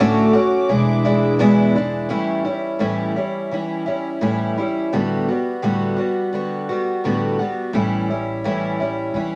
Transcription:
Already playing: A1 C#4 F#5 D6
0.00 A2 D3 A3 C#4 F#4
0.33 A3 C#4 F#4
0.69 E1 E3 G#3 D4 E4 G#4 E5
1.05 E3 G#3 D4 E4
1.39 E2 B2 E3 G#3 D4 E4
1.75 E3 G#3 D4 E4
2.09 A2 E3 G3 C#4 E4
2.45 G3 C#4 E4
2.79 A2 E3 G3 C#4 E4
3.16 G3 C#4 E4
3.51 E3 G3 C#4 E4
3.86 G3 C#4 E4
4.21 A2 E3 G3 C#4 E4
4.58 G3 C#4 E4
4.93 A2 D3 G3 B3 F#4
5.28 G3 B3 F#4
5.62 A2 D3 G3 B3 F#4
5.97 G3 B3 F#4
6.33 D3 G3 B3 F#4
6.69 G3 B3 F#4
7.04 A2 D3 G3 B3 F#4
7.39 G3 B3 F#4
7.73 A1 A2 E3 G3 C#4 E4
8.10 G3 C#4 E4
8.44 A2 E3 G3 C#4 E4
8.80 G3 C#4 E4
9.13 E2 E3 G3 C#4 E4

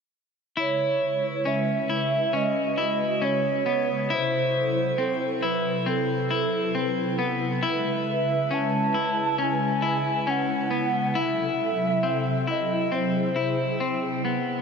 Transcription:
0.57 C#3 G#3 E4 B4 C#5
1.45 C#4 E5
1.90 E4
2.33 C#4 F#4 D#5
2.78 E4
3.22 C#4 C#5
3.66 B3
4.09 C3 F#3 E4 A4
4.14 C5
4.98 C4
5.43 E4 B4
5.86 C4 A4 B4
6.31 E4
6.75 C4
7.19 B3
7.62 C#3 G#3 E4 E5
8.51 C#4 A5
8.94 E4
9.38 C#4 G#5
9.82 E4
10.27 C#4 F#5
10.71 B3
11.15 C3 F#3 E4 A4 E5
12.03 C4
12.47 E4 D#5
12.91 C4 G#4
12.95 C5
13.36 E4
13.80 C4
14.25 B3

